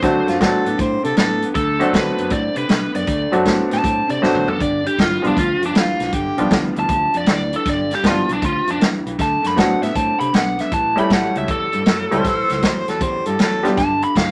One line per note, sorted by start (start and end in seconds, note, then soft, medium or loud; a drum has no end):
0.00 0.19 D2 medium
0.00 0.25 D3 medium
0.00 0.39 F#3 medium
0.00 0.25 A3 medium
0.00 0.39 A3 medium
0.00 0.40 C4 medium
0.00 0.40 D4 medium
0.00 0.40 F#4 medium
0.00 0.27 C5 medium
0.00 kick loud
0.00 snare soft
0.00 closed hi-hat medium
0.27 0.36 F#2 medium
0.27 0.39 D3 medium
0.27 0.39 A3 medium
0.27 0.44 F4 medium
0.27 snare soft
0.27 closed hi-hat medium
0.40 0.57 A2 medium
0.40 0.63 D3 medium
0.40 0.63 F#3 medium
0.40 0.63 A3 medium
0.40 0.63 B3 medium
0.40 0.64 C4 medium
0.40 0.64 D4 medium
0.40 0.64 F#4 medium
0.40 0.78 A4 medium
0.40 kick medium
0.40 snare loud
0.40 closed hi-hat medium
0.65 0.75 A2 medium
0.65 0.76 D3 medium
0.65 0.77 B3 medium
0.65 closed hi-hat medium
0.78 0.96 A2 medium
0.78 1.01 D3 medium
0.78 1.01 C4 medium
0.78 1.04 C5 medium
0.78 kick loud
0.78 closed hi-hat medium
1.03 1.13 C3 medium
1.03 1.15 D3 medium
1.03 1.15 C4 medium
1.03 1.17 A4 medium
1.03 closed hi-hat medium
1.16 1.43 A2 medium
1.16 1.39 D3 medium
1.16 1.39 B3 medium
1.16 1.48 A4 medium
1.16 snare loud
1.16 closed hi-hat medium
1.42 1.54 D3 medium
1.42 1.54 B3 medium
1.42 closed hi-hat medium
1.55 1.81 D2 medium
1.55 1.78 D3 medium
1.55 1.78 A3 medium
1.55 1.92 A4 medium
1.55 kick loud
1.55 closed hi-hat medium
1.79 1.91 D3 medium
1.79 2.28 F#3 medium
1.79 2.28 A3 medium
1.79 1.92 A3 medium
1.79 2.29 C4 medium
1.79 2.29 D4 medium
1.79 2.29 F#4 medium
1.79 closed hi-hat medium
1.92 2.10 D2 medium
1.92 2.15 D3 medium
1.92 2.15 B3 medium
1.92 2.31 B4 medium
1.92 kick medium
1.92 snare loud
1.92 closed hi-hat medium
2.18 2.27 F#2 medium
2.18 2.30 D3 medium
2.18 2.30 B3 medium
2.18 closed hi-hat medium
2.30 2.48 A2 medium
2.30 2.54 D3 medium
2.30 2.54 C4 medium
2.30 2.56 D5 medium
2.30 kick loud
2.30 closed hi-hat medium
2.56 2.65 C3 medium
2.56 2.66 D3 medium
2.56 2.67 C4 medium
2.56 2.94 B4 medium
2.56 closed hi-hat medium
2.67 2.86 B2 medium
2.67 2.91 D3 medium
2.67 2.91 B3 medium
2.67 snare loud
2.67 closed hi-hat medium
2.93 3.04 F#2 medium
2.93 3.05 D3 medium
2.93 3.06 B3 medium
2.93 3.32 D5 medium
2.93 closed hi-hat medium
3.07 3.24 D2 medium
3.07 3.30 D3 medium
3.07 3.30 A3 medium
3.07 kick loud
3.07 closed hi-hat medium
3.31 3.42 F#2 medium
3.31 3.43 D3 medium
3.31 3.81 F#3 medium
3.31 3.44 A3 medium
3.31 3.81 A3 medium
3.31 3.81 C4 medium
3.31 3.81 D4 medium
3.31 3.81 F#4 medium
3.31 closed hi-hat medium
3.44 3.62 A2 medium
3.44 3.67 D3 medium
3.44 3.68 B3 medium
3.44 kick medium
3.44 snare loud
3.44 closed hi-hat medium
3.68 3.80 A2 medium
3.68 3.80 D3 medium
3.68 3.82 B3 medium
3.68 snare soft
3.68 closed hi-hat medium
3.74 4.09 A5 medium
3.82 4.01 A2 medium
3.82 4.05 D3 medium
3.82 4.05 C4 medium
3.82 kick loud
3.82 closed hi-hat medium
4.07 4.18 C3 medium
4.07 4.19 D3 medium
4.07 4.20 C4 medium
4.07 4.23 D5 medium
4.07 closed hi-hat medium
4.20 4.48 A1 medium
4.20 4.43 D3 medium
4.20 4.44 F#3 medium
4.20 4.45 A3 medium
4.20 4.44 B3 medium
4.20 4.45 C4 medium
4.20 4.45 D4 medium
4.20 4.45 F#4 medium
4.20 4.49 C5 medium
4.20 snare medium
4.35 mid tom medium
4.46 4.58 D3 medium
4.46 4.58 B3 medium
4.46 4.61 A4 medium
4.46 floor tom medium
4.59 4.86 G1 medium
4.59 4.82 G2 medium
4.59 4.82 D3 medium
4.59 4.85 D5 medium
4.59 kick loud
4.59 closed hi-hat medium
4.84 4.95 G2 medium
4.84 4.96 D3 medium
4.84 4.99 G4 medium
4.84 closed hi-hat medium
4.97 5.15 G1 medium
4.97 5.20 G2 medium
4.97 5.20 E3 medium
4.97 kick medium
4.97 snare loud
4.97 closed hi-hat medium
5.01 5.24 F4 medium
5.22 5.32 B1 medium
5.22 5.34 G2 medium
5.22 5.34 E3 medium
5.22 5.34 F3 medium
5.22 5.35 G3 medium
5.22 5.35 B3 medium
5.22 5.35 D4 medium
5.22 5.35 F4 medium
5.22 closed hi-hat medium
5.27 5.38 D4 medium
5.35 5.53 D2 medium
5.35 5.58 G2 medium
5.35 5.59 F3 medium
5.35 5.62 F4 medium
5.35 kick loud
5.35 closed hi-hat medium
5.61 5.70 F2 medium
5.61 5.73 G2 medium
5.61 5.73 F3 medium
5.61 closed hi-hat medium
5.66 5.76 D4 medium
5.74 5.91 E2 medium
5.74 5.97 G2 medium
5.74 5.97 E3 medium
5.74 6.15 F4 medium
5.74 snare loud
5.74 closed hi-hat medium
5.99 6.08 B1 medium
5.99 6.11 G2 medium
5.99 6.11 E3 medium
5.99 snare soft
5.99 closed hi-hat medium
6.12 6.30 G1 medium
6.12 6.35 G2 medium
6.12 6.35 D3 medium
6.12 6.62 G4 medium
6.12 kick loud
6.12 closed hi-hat medium
6.37 6.46 B1 medium
6.37 6.49 G2 medium
6.37 6.49 D3 medium
6.37 6.87 F3 medium
6.37 6.87 G3 medium
6.37 6.87 B3 medium
6.37 6.87 D4 medium
6.37 6.87 F4 medium
6.37 closed hi-hat medium
6.50 6.68 D2 medium
6.50 6.73 G2 medium
6.50 6.73 E3 medium
6.50 kick medium
6.50 snare loud
6.50 closed hi-hat medium
6.75 6.85 D2 medium
6.75 6.87 G2 medium
6.75 6.88 E3 medium
6.75 closed hi-hat medium
6.79 7.15 A5 medium
6.88 7.06 D2 medium
6.88 7.11 G2 medium
6.88 7.12 F3 medium
6.88 kick loud
6.88 closed hi-hat medium
7.13 7.23 F2 medium
7.13 7.26 G2 medium
7.13 7.26 F3 medium
7.13 7.29 D5 medium
7.13 closed hi-hat medium
7.26 7.53 D2 medium
7.26 7.50 G2 medium
7.26 7.50 E3 medium
7.26 snare loud
7.26 closed hi-hat medium
7.32 7.54 D5 medium
7.52 7.64 G2 medium
7.52 7.65 E3 medium
7.52 7.67 A4 medium
7.52 closed hi-hat medium
7.65 7.92 G1 medium
7.65 7.88 G2 medium
7.65 7.88 D3 medium
7.65 kick loud
7.65 snare soft
7.65 closed hi-hat medium
7.69 7.92 D5 medium
7.90 8.01 G2 medium
7.90 8.02 D3 medium
7.90 snare soft
7.90 closed hi-hat medium
7.95 8.06 G4 medium
8.02 8.21 G1 medium
8.02 8.26 G2 medium
8.02 8.26 E3 medium
8.02 8.27 F3 medium
8.02 8.27 G3 medium
8.02 8.27 B3 medium
8.02 8.27 D4 medium
8.02 8.28 F4 medium
8.02 kick medium
8.02 snare loud
8.02 closed hi-hat medium
8.07 8.30 F4 medium
8.28 8.38 B1 medium
8.28 8.41 G2 medium
8.28 8.41 E3 medium
8.28 closed hi-hat medium
8.33 8.44 D4 medium
8.42 8.59 D2 medium
8.42 8.65 G2 medium
8.42 8.65 F3 medium
8.42 8.69 F4 medium
8.42 kick loud
8.42 closed hi-hat medium
8.66 8.76 F2 medium
8.66 8.79 G2 medium
8.66 8.79 F3 medium
8.66 closed hi-hat medium
8.71 8.82 D4 medium
8.80 8.97 E2 medium
8.80 9.03 G2 medium
8.80 9.03 E3 medium
8.80 snare loud
8.80 closed hi-hat medium
9.05 9.14 B1 medium
9.05 9.18 G2 medium
9.05 9.18 E3 medium
9.05 closed hi-hat medium
9.18 9.36 D2 medium
9.18 9.41 D3 medium
9.18 9.42 A3 medium
9.18 9.46 A5 loud
9.18 kick loud
9.18 snare soft
9.18 closed hi-hat medium
9.42 9.53 F#2 medium
9.42 9.54 D3 medium
9.42 9.55 A3 medium
9.42 snare soft
9.42 closed hi-hat medium
9.46 9.58 B5 medium
9.55 9.74 A2 medium
9.55 9.79 D3 medium
9.55 9.79 F#3 medium
9.55 9.80 A3 soft
9.55 9.79 B3 medium
9.55 9.80 C4 medium
9.55 9.80 D4 soft
9.55 9.80 F#4 medium
9.55 9.82 F#5 medium
9.55 kick medium
9.55 snare loud
9.55 closed hi-hat medium
9.81 9.91 A2 medium
9.81 9.93 D3 medium
9.81 9.94 B3 medium
9.81 9.96 E5 medium
9.81 snare soft
9.81 closed hi-hat medium
9.95 10.12 A2 medium
9.95 10.18 D3 medium
9.95 10.18 C4 medium
9.95 10.19 A5 medium
9.95 kick loud
9.95 closed hi-hat medium
10.20 10.29 C3 medium
10.20 10.32 D3 medium
10.20 10.32 C4 medium
10.20 10.33 B5 medium
10.20 closed hi-hat medium
10.33 10.59 B1 medium
10.33 10.56 D3 medium
10.33 10.56 B3 medium
10.33 10.61 F#5 medium
10.33 snare loud
10.33 closed hi-hat medium
10.57 10.70 D3 medium
10.57 10.70 B3 medium
10.57 10.72 E5 medium
10.57 snare soft
10.57 closed hi-hat medium
10.71 10.98 A1 medium
10.71 10.94 A2 medium
10.71 10.95 E3 medium
10.71 10.99 A5 medium
10.71 kick loud
10.71 closed hi-hat medium
10.95 11.07 A2 medium
10.95 11.08 E3 medium
10.95 11.45 G3 medium
10.95 11.45 A3 medium
10.95 11.46 C#4 medium
10.95 11.46 E4 medium
10.95 11.46 G4 medium
10.95 11.11 B5 medium
10.95 closed hi-hat medium
11.08 11.27 A1 medium
11.08 11.32 A2 medium
11.08 11.33 F#3 medium
11.08 kick medium
11.08 snare loud
11.08 closed hi-hat medium
11.13 11.36 F#5 medium
11.34 11.44 C#2 medium
11.34 11.46 A2 medium
11.34 11.47 F#3 medium
11.34 closed hi-hat medium
11.38 11.49 E5 medium
11.47 11.65 E2 medium
11.47 11.70 A2 medium
11.47 11.71 G3 medium
11.47 12.61 A4 medium
11.47 kick loud
11.47 closed hi-hat medium
11.72 11.82 G2 medium
11.72 11.84 A2 medium
11.72 11.85 G3 medium
11.72 closed hi-hat medium
11.86 12.03 F#2 medium
11.86 12.09 A2 medium
11.86 12.09 F#3 medium
11.86 snare loud
11.86 closed hi-hat medium
12.11 12.20 C#2 medium
12.11 12.23 A2 medium
12.11 12.23 F#3 medium
12.11 12.23 G3 medium
12.11 12.23 A3 medium
12.11 12.24 C#4 medium
12.11 12.24 E4 medium
12.11 12.24 G4 medium
12.11 12.92 C5 medium
12.11 closed hi-hat medium
12.24 12.42 A1 medium
12.24 12.47 A2 medium
12.24 12.47 E3 medium
12.24 kick loud
12.24 snare soft
12.24 closed hi-hat medium
12.49 12.59 C#2 medium
12.49 12.61 A2 medium
12.49 12.62 E3 medium
12.49 snare soft
12.49 closed hi-hat medium
12.62 12.80 E2 medium
12.62 12.85 A2 medium
12.62 12.85 F#3 medium
12.62 kick medium
12.62 snare loud
12.62 closed hi-hat medium
12.88 12.97 E2 medium
12.88 12.99 A2 medium
12.88 13.00 F#3 medium
12.88 13.04 A4 medium
12.88 snare soft
12.88 closed hi-hat medium
13.01 13.18 E2 medium
13.01 13.24 A2 medium
13.01 13.24 G3 medium
13.01 13.28 C5 medium
13.01 kick loud
13.01 closed hi-hat medium
13.25 13.35 G2 medium
13.25 13.38 A2 medium
13.25 13.38 G3 medium
13.25 13.39 A4 medium
13.25 closed hi-hat medium
13.39 13.65 E2 medium
13.39 13.62 A2 medium
13.39 13.62 F#3 medium
13.39 13.71 A4 medium
13.39 snare loud
13.39 closed hi-hat medium
13.63 13.76 A2 medium
13.63 13.77 F#3 medium
13.63 13.76 G3 medium
13.63 13.76 B3 medium
13.63 13.76 D4 medium
13.63 13.76 F4 medium
13.63 13.76 G4 medium
13.63 snare soft
13.63 closed hi-hat medium
13.77 14.03 G1 medium
13.77 14.00 G2 medium
13.77 14.01 D3 medium
13.77 14.02 A5 loud
13.77 kick loud
13.77 snare soft
13.77 closed hi-hat medium
14.02 14.15 G2 medium
14.02 14.15 D3 medium
14.02 14.16 B5 medium
14.02 closed hi-hat medium
14.16 14.31 G1 medium
14.16 14.31 G2 medium
14.16 14.31 E3 medium
14.16 14.31 F5 medium
14.16 kick medium
14.16 snare loud
14.16 closed hi-hat medium